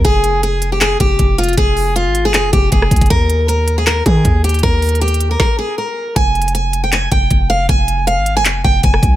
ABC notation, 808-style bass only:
X:1
M:4/4
L:1/16
Q:1/4=157
K:Fm
V:1 name="808-style bass" clef=bass
F,,,8- F,,,2 F,,,2 F,,,4 | F,,,4- F,,, A,,,2- A,,,/2 F,,,2- F,,,/2 F,,,2 F,,,2 C,, F,,, | E,,8- E,,2 E,2 E,,4 | E,,8 z8 |
F,,,8- F,,,2 F,,,2 F,,,4 | F,,,4- F,,, A,,,2- A,,,/2 F,,,2- F,,,/2 F,,,2 F,,,2 C,,2 |]